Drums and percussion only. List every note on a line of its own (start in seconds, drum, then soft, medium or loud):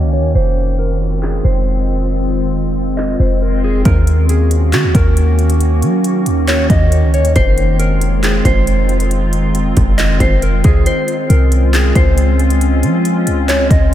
1.23 clap loud
2.98 clap loud
3.85 kick loud
3.85 closed hi-hat medium
4.07 closed hi-hat medium
4.29 closed hi-hat medium
4.51 closed hi-hat medium
4.73 clap loud
4.73 closed hi-hat medium
4.95 kick loud
4.95 closed hi-hat medium
5.17 closed hi-hat medium
5.39 closed hi-hat soft
5.50 closed hi-hat medium
5.61 closed hi-hat medium
5.82 closed hi-hat medium
6.04 closed hi-hat medium
6.26 closed hi-hat medium
6.48 clap loud
6.48 closed hi-hat medium
6.70 kick medium
6.70 closed hi-hat medium
6.92 closed hi-hat medium
7.14 closed hi-hat soft
7.25 closed hi-hat medium
7.36 kick loud
7.36 closed hi-hat medium
7.58 closed hi-hat medium
7.80 closed hi-hat medium
8.01 closed hi-hat medium
8.24 clap loud
8.24 closed hi-hat medium
8.45 kick medium
8.45 closed hi-hat medium
8.67 closed hi-hat medium
8.89 closed hi-hat soft
9.00 closed hi-hat medium
9.11 closed hi-hat medium
9.33 closed hi-hat medium
9.55 closed hi-hat medium
9.77 kick medium
9.77 closed hi-hat medium
9.99 clap loud
9.99 closed hi-hat medium
10.20 kick loud
10.20 closed hi-hat medium
10.42 closed hi-hat medium
10.64 kick loud
10.64 closed hi-hat medium
10.86 closed hi-hat medium
11.08 closed hi-hat medium
11.30 closed hi-hat medium
11.52 closed hi-hat medium
11.74 clap loud
11.74 closed hi-hat medium
11.95 kick loud
11.95 closed hi-hat medium
12.18 closed hi-hat medium
12.39 closed hi-hat soft
12.50 closed hi-hat medium
12.61 closed hi-hat medium
12.83 closed hi-hat medium
13.05 closed hi-hat medium
13.27 closed hi-hat medium
13.49 clap loud
13.49 closed hi-hat medium
13.71 kick medium
13.71 closed hi-hat medium